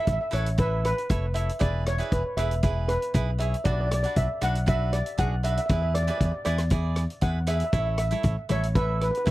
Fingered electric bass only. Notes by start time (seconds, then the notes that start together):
0.07 A1
0.33 A1
1.10 F1
1.61 E1
2.12 E1
2.37 E1
3.15 B1
3.65 B1
4.17 B1
4.42 B1
5.19 B1
5.70 E2
6.21 E2
6.46 E2
7.22 E2
7.73 A1
8.24 A1
8.51 A1
9.27 C#2